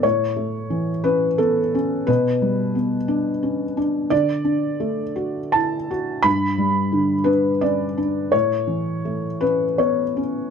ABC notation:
X:1
M:3/4
L:1/8
Q:1/4=87
K:Amix
V:1 name="Felt piano"
c3 B A2 | B2 z4 | d4 a2 | b3 B d2 |
c3 B c2 |]
V:2 name="Felt piano"
A,, A, E, C B, C | B,, G, B, D C D | D, D A, F E F | G,, G, D, D C D |
A,, E, A, C B, C |]